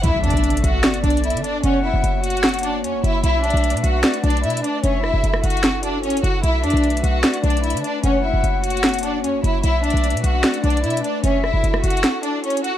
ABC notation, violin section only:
X:1
M:4/4
L:1/8
Q:1/4=150
K:Bm
V:1 name="Violin section"
[Ee] [Dd]2 [Ff]2 [Dd] [Ee] [Dd] | [Cc] [Ee]2 [Ff]2 [Dd] [Cc] [Ee] | [Ee] [Dd]2 [Ff]2 [Dd] [Ee] [Dd] | [Cc] [Ee]2 [Ff]2 [Dd] [Cc] [Ff] |
[Ee] [Dd]2 [Ff]2 [Dd] [Ee] [Dd] | [Cc] [Ee]2 [Ff]2 [Dd] [Cc] [Ee] | [Ee] [Dd]2 [Ff]2 [Dd] [Ee] [Dd] | [Cc] [Ee]2 [Ff]2 [Dd] [Cc] [Ff] |]